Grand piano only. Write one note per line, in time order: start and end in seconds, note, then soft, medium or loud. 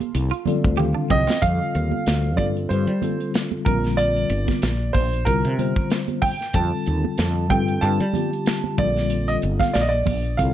1.11 1.40 D#5 medium
1.42 2.41 F5 medium
2.37 2.44 D5 medium
2.69 3.30 C5 medium
3.65 3.99 A#4 medium
3.97 4.97 D5 medium
4.93 5.27 C5 medium
5.25 5.86 A#4 medium
6.22 6.55 G5 medium
6.55 7.54 A5 loud
7.50 7.83 G5 medium
7.81 8.74 A5 medium
8.79 9.30 D5 medium
9.28 9.35 D#5 medium
9.60 9.75 F5 medium
9.73 9.82 D5 medium
9.81 9.90 D#5 medium
9.89 10.40 D5 medium
10.37 10.54 F5 medium